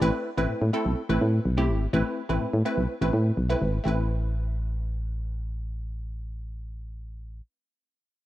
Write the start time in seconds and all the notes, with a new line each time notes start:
0.02 A1 A3 C4 E4 B4
0.37 A1 A3 C4 E4 B4
0.50 A2
0.62 A2
0.73 A3 C4 E4 A4
0.86 B1
1.09 A1 A3 C4 E4 B4
1.21 A2
1.45 B1
1.57 A3 C4 E4 G4
1.69 G#1
1.93 A1 A3 C4 E4 B4
2.29 A1 A3 C4 E4 B4
2.42 A2
2.54 A2
2.65 A3 C4 E4 B4
2.77 B1
3.01 A1 A3 C4 E4 B4
3.13 A2
3.37 B1
3.49 A3 C4 E4 B4
3.62 G#1
3.84 A1 A3 C4 E4 B4